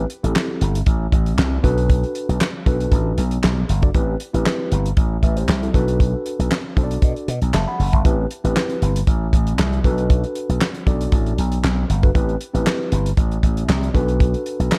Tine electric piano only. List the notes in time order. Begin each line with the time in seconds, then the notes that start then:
0.23 B3 E4 G4 A4
0.29 C4
1.63 D4 F#4 A4 B4
2.66 D4 F#4 A4 B4
3.82 D4 F#4 A4 D5
3.94 C4 E4 G4 B4
4.34 C4 E4 G4 B4
5.23 B4 E5
5.37 G4 C5
5.62 E4 A4
5.74 D4 F#4 A4 B4
6.76 D4 F#4 A4 C5
6.83 D5
7.54 E5 A5
7.68 F#5 B5
7.93 E5 A5
8.05 C4 E4 G4 B4
8.44 C4 E4 G4 B4
9.84 D4 F#4 A4 B4
10.86 D4 F#4 A4 D5
12.03 D4 F#4 A4 B4
12.15 C4 E4 G4 B4
12.54 C4 E4 G4 B4
13.94 D4 F#4 A4 B4